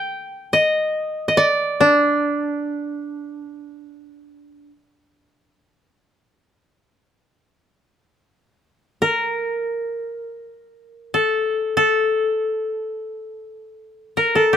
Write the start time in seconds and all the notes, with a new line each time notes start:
Already playing: G5
0.53 D#5
1.28 D#5
1.37 D5
1.81 D4
9.02 A#4
11.14 A4
11.77 A4
14.17 A#4
14.35 A4
14.53 G4